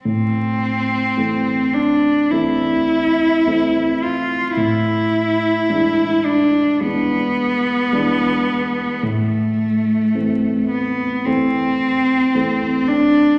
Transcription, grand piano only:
X:1
M:4/4
L:1/8
Q:1/4=54
K:Am
V:1 name="Grand piano" clef=bass
A,,2 [E,A,C]2 [E,A,C]2 [E,A,C]2 | A,,2 [E,^G,D]2 [E,G,D]2 [E,G,D]2 | A,,2 [E,A,C]2 [E,A,C]2 [E,A,C]2 |]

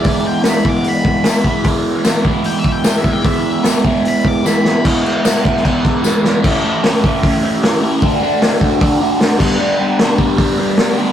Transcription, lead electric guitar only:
X:1
M:4/4
L:1/8
Q:1/4=151
K:Emix
V:1 name="Lead electric guitar"
d =g b d' b4 | z4 (3=g e g (3g e g | e2 z2 b d' b b | z8 |
z8 | z8 | z8 |]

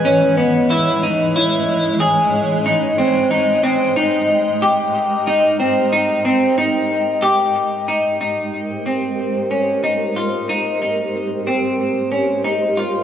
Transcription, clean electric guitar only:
X:1
M:4/4
L:1/8
Q:1/4=92
K:Ab
V:1 name="Clean electric guitar"
D =B, =E ^D E2 ^G2 | E C E C E2 G2 | E C E C E2 G2 | E E2 C2 D E F |
E E2 C2 D E F |]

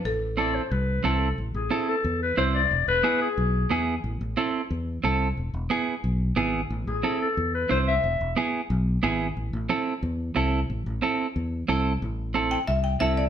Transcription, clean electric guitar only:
X:1
M:4/4
L:1/8
Q:1/4=180
K:Am
V:1 name="Clean electric guitar"
z2 [CEA] z3 [CEA] z | z2 [CEA] z3 [CEc] z | z2 [B,E^G] z3 [B,EG] z | z2 [CEA] z3 [CEA] z |
z2 [B,E^G] z3 [B,EG] z | z2 [CEA] z3 [CEc] z | z2 [B,E^G] z3 [B,EG] z | z2 [CEA] z3 [CEA] z |
z2 [CEA] z3 [CEA] z | z2 [CEA] z3 [CEA] z |]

